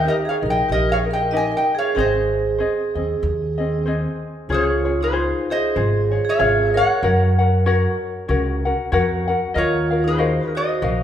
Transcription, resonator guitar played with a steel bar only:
0, 0, Header, 1, 2, 480
1, 0, Start_track
1, 0, Key_signature, -4, "major"
1, 0, Tempo, 632911
1, 1488, Time_signature, 4, 2, 24, 8
1, 3410, Key_signature, -5, "major"
1, 8367, End_track
2, 0, Start_track
2, 0, Title_t, "Resonator guitar played with a steel bar"
2, 0, Program_c, 0, 25
2, 62, Note_on_c, 0, 75, 82
2, 74, Note_on_c, 0, 70, 66
2, 103, Note_off_c, 0, 75, 0
2, 114, Note_off_c, 0, 70, 0
2, 219, Note_on_c, 0, 77, 78
2, 229, Note_on_c, 0, 73, 60
2, 260, Note_off_c, 0, 77, 0
2, 269, Note_off_c, 0, 73, 0
2, 381, Note_on_c, 0, 79, 84
2, 389, Note_on_c, 0, 75, 64
2, 523, Note_off_c, 0, 79, 0
2, 527, Note_off_c, 0, 75, 0
2, 546, Note_on_c, 0, 75, 96
2, 560, Note_on_c, 0, 70, 67
2, 693, Note_off_c, 0, 70, 0
2, 697, Note_on_c, 0, 77, 97
2, 701, Note_off_c, 0, 75, 0
2, 706, Note_on_c, 0, 73, 68
2, 739, Note_off_c, 0, 77, 0
2, 746, Note_off_c, 0, 73, 0
2, 860, Note_on_c, 0, 79, 84
2, 870, Note_on_c, 0, 75, 66
2, 1008, Note_off_c, 0, 75, 0
2, 1018, Note_off_c, 0, 79, 0
2, 1036, Note_on_c, 0, 80, 90
2, 1047, Note_on_c, 0, 75, 60
2, 1178, Note_off_c, 0, 75, 0
2, 1186, Note_off_c, 0, 80, 0
2, 1189, Note_on_c, 0, 79, 80
2, 1199, Note_on_c, 0, 75, 57
2, 1333, Note_off_c, 0, 75, 0
2, 1343, Note_off_c, 0, 79, 0
2, 1354, Note_on_c, 0, 77, 85
2, 1358, Note_on_c, 0, 73, 69
2, 1493, Note_off_c, 0, 73, 0
2, 1504, Note_on_c, 0, 75, 79
2, 1505, Note_off_c, 0, 77, 0
2, 1516, Note_on_c, 0, 72, 57
2, 2907, Note_off_c, 0, 75, 0
2, 2913, Note_off_c, 0, 72, 0
2, 3430, Note_on_c, 0, 68, 59
2, 3445, Note_on_c, 0, 73, 83
2, 3771, Note_off_c, 0, 68, 0
2, 3811, Note_on_c, 0, 68, 59
2, 3815, Note_off_c, 0, 73, 0
2, 3820, Note_on_c, 0, 72, 76
2, 4149, Note_off_c, 0, 68, 0
2, 4171, Note_off_c, 0, 72, 0
2, 4180, Note_on_c, 0, 72, 68
2, 4186, Note_on_c, 0, 75, 89
2, 4724, Note_off_c, 0, 72, 0
2, 4768, Note_off_c, 0, 75, 0
2, 4771, Note_on_c, 0, 73, 76
2, 4775, Note_on_c, 0, 77, 97
2, 5110, Note_off_c, 0, 73, 0
2, 5133, Note_off_c, 0, 77, 0
2, 5136, Note_on_c, 0, 78, 105
2, 5140, Note_on_c, 0, 73, 77
2, 6058, Note_off_c, 0, 78, 0
2, 6060, Note_off_c, 0, 73, 0
2, 7259, Note_on_c, 0, 70, 59
2, 7266, Note_on_c, 0, 73, 86
2, 7603, Note_off_c, 0, 70, 0
2, 7641, Note_on_c, 0, 72, 87
2, 7643, Note_off_c, 0, 73, 0
2, 7646, Note_on_c, 0, 68, 60
2, 7985, Note_off_c, 0, 68, 0
2, 8003, Note_off_c, 0, 72, 0
2, 8013, Note_on_c, 0, 72, 65
2, 8017, Note_on_c, 0, 75, 95
2, 8367, Note_off_c, 0, 72, 0
2, 8367, Note_off_c, 0, 75, 0
2, 8367, End_track
0, 0, End_of_file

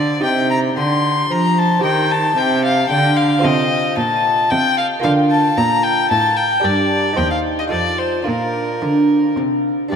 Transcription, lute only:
0, 0, Header, 1, 2, 480
1, 0, Start_track
1, 0, Tempo, 534283
1, 208, Time_signature, 3, 2, 24, 8
1, 6446, Tempo, 549451
1, 8876, End_track
2, 0, Start_track
2, 0, Title_t, "Lute"
2, 0, Program_c, 0, 24
2, 0, Note_on_c, 0, 50, 43
2, 0, Note_on_c, 0, 62, 36
2, 0, Note_on_c, 0, 67, 38
2, 0, Note_on_c, 0, 70, 36
2, 154, Note_off_c, 0, 62, 0
2, 160, Note_off_c, 0, 67, 0
2, 167, Note_off_c, 0, 70, 0
2, 172, Note_off_c, 0, 50, 0
2, 177, Note_on_c, 0, 63, 39
2, 185, Note_on_c, 0, 67, 39
2, 212, Note_on_c, 0, 48, 43
2, 658, Note_off_c, 0, 48, 0
2, 694, Note_on_c, 0, 50, 46
2, 1138, Note_off_c, 0, 50, 0
2, 1170, Note_on_c, 0, 53, 44
2, 1601, Note_off_c, 0, 63, 0
2, 1605, Note_off_c, 0, 67, 0
2, 1608, Note_on_c, 0, 60, 41
2, 1615, Note_off_c, 0, 53, 0
2, 1624, Note_on_c, 0, 67, 41
2, 1649, Note_on_c, 0, 51, 45
2, 2092, Note_off_c, 0, 51, 0
2, 2123, Note_on_c, 0, 48, 45
2, 2570, Note_off_c, 0, 48, 0
2, 2608, Note_on_c, 0, 50, 47
2, 3032, Note_off_c, 0, 60, 0
2, 3040, Note_off_c, 0, 67, 0
2, 3045, Note_on_c, 0, 60, 43
2, 3053, Note_off_c, 0, 50, 0
2, 3058, Note_on_c, 0, 65, 45
2, 3070, Note_on_c, 0, 69, 42
2, 3085, Note_on_c, 0, 48, 52
2, 3534, Note_off_c, 0, 48, 0
2, 3570, Note_on_c, 0, 46, 49
2, 4016, Note_off_c, 0, 46, 0
2, 4054, Note_on_c, 0, 48, 49
2, 4473, Note_off_c, 0, 60, 0
2, 4479, Note_off_c, 0, 65, 0
2, 4485, Note_off_c, 0, 69, 0
2, 4487, Note_on_c, 0, 58, 45
2, 4495, Note_off_c, 0, 48, 0
2, 4499, Note_on_c, 0, 65, 46
2, 4515, Note_on_c, 0, 70, 45
2, 4526, Note_on_c, 0, 50, 51
2, 4970, Note_off_c, 0, 50, 0
2, 5007, Note_on_c, 0, 46, 47
2, 5448, Note_off_c, 0, 46, 0
2, 5488, Note_on_c, 0, 45, 45
2, 5907, Note_off_c, 0, 58, 0
2, 5913, Note_off_c, 0, 65, 0
2, 5921, Note_off_c, 0, 70, 0
2, 5927, Note_on_c, 0, 62, 43
2, 5930, Note_off_c, 0, 45, 0
2, 5939, Note_on_c, 0, 67, 44
2, 5952, Note_on_c, 0, 70, 42
2, 5963, Note_on_c, 0, 43, 46
2, 6400, Note_off_c, 0, 62, 0
2, 6404, Note_on_c, 0, 63, 37
2, 6408, Note_off_c, 0, 67, 0
2, 6409, Note_off_c, 0, 43, 0
2, 6419, Note_on_c, 0, 67, 40
2, 6425, Note_off_c, 0, 70, 0
2, 6433, Note_on_c, 0, 72, 40
2, 6444, Note_on_c, 0, 39, 45
2, 6872, Note_off_c, 0, 63, 0
2, 6883, Note_on_c, 0, 63, 35
2, 6884, Note_off_c, 0, 39, 0
2, 6891, Note_off_c, 0, 67, 0
2, 6895, Note_on_c, 0, 65, 37
2, 6900, Note_off_c, 0, 72, 0
2, 6906, Note_on_c, 0, 69, 38
2, 6921, Note_on_c, 0, 41, 40
2, 7359, Note_off_c, 0, 63, 0
2, 7362, Note_on_c, 0, 62, 36
2, 7364, Note_off_c, 0, 65, 0
2, 7367, Note_off_c, 0, 41, 0
2, 7375, Note_on_c, 0, 65, 36
2, 7379, Note_off_c, 0, 69, 0
2, 7389, Note_on_c, 0, 70, 34
2, 7401, Note_on_c, 0, 46, 40
2, 7847, Note_off_c, 0, 46, 0
2, 7882, Note_on_c, 0, 50, 40
2, 8328, Note_off_c, 0, 50, 0
2, 8364, Note_on_c, 0, 48, 38
2, 8792, Note_off_c, 0, 62, 0
2, 8799, Note_off_c, 0, 65, 0
2, 8806, Note_off_c, 0, 70, 0
2, 8812, Note_off_c, 0, 48, 0
2, 8813, Note_on_c, 0, 62, 37
2, 8824, Note_on_c, 0, 67, 39
2, 8837, Note_on_c, 0, 70, 36
2, 8848, Note_on_c, 0, 43, 40
2, 8876, Note_off_c, 0, 43, 0
2, 8876, Note_off_c, 0, 62, 0
2, 8876, Note_off_c, 0, 67, 0
2, 8876, Note_off_c, 0, 70, 0
2, 8876, End_track
0, 0, End_of_file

